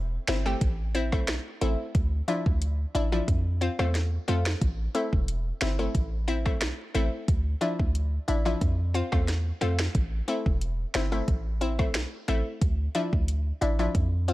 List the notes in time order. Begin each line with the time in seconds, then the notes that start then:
Already playing: E1
0.28 G1 C4 E4, finger snap, snare, closed hi-hat
0.46 A3 C4 G4
0.61 A1, kick, closed hi-hat
0.95 C4 E4, closed hi-hat
1.12 B1 A3 C4 E4, kick, cross-stick
1.27 finger snap, snare, closed hi-hat
1.61 A1 A3 C4 E4, closed hi-hat
1.95 D2, kick, closed hi-hat
2.28 F3 D4 E4, closed hi-hat
2.46 D2, kick
2.62 closed hi-hat
2.95 A1 D4 E4, closed hi-hat
3.12 F3 D4 E4
3.28 F2, kick, closed hi-hat
3.61 C4 F4, closed hi-hat
3.79 E2 A3 C4 F4, cross-stick
3.95 snare, closed hi-hat
4.28 F2 A3 C4 F4, closed hi-hat
4.45 finger snap, snare
4.61 A1, kick, closed hi-hat
4.95 A3 C4 E4, closed hi-hat
5.13 E1, kick
5.28 closed hi-hat
5.61 G1 C4 E4, finger snap, snare, closed hi-hat
5.79 A3 C4 E4
5.95 A1, kick, closed hi-hat
6.28 C4 E4, closed hi-hat
6.46 B1 A3 C4 E4, kick, cross-stick
6.61 finger snap, snare, closed hi-hat
6.94 A1 A3 C4 E4, closed hi-hat
7.28 D2, kick, closed hi-hat
7.61 F3 D4 E4, closed hi-hat
7.79 D2, kick
7.95 closed hi-hat
8.28 A1 D4 E4, closed hi-hat
8.45 F3 D4 E4
8.61 F2, kick, closed hi-hat
8.94 C4 F4, closed hi-hat
9.12 E2 A3 C4 F4, kick, cross-stick
9.28 snare, closed hi-hat
9.61 F2 A3 C4 F4, closed hi-hat
9.79 finger snap, snare
9.95 A1, kick, closed hi-hat
10.28 A3 C4 E4, closed hi-hat
10.46 E1, kick
10.61 closed hi-hat
10.94 G1 C4 E4, finger snap, snare, closed hi-hat
11.12 A3 C4 E4
11.28 A1, kick, closed hi-hat
11.61 C4 E4, closed hi-hat
11.79 B1 A3 C4 E4, kick, cross-stick
11.94 finger snap, snare, closed hi-hat
12.28 A1 A3 C4 E4, closed hi-hat
12.61 D2, kick, closed hi-hat
12.95 F3 D4 E4, closed hi-hat
13.13 D2, kick
13.28 closed hi-hat
13.61 A1 D4 E4, closed hi-hat
13.79 F3 D4 E4
13.95 F2, kick, closed hi-hat
14.28 C4 F4, closed hi-hat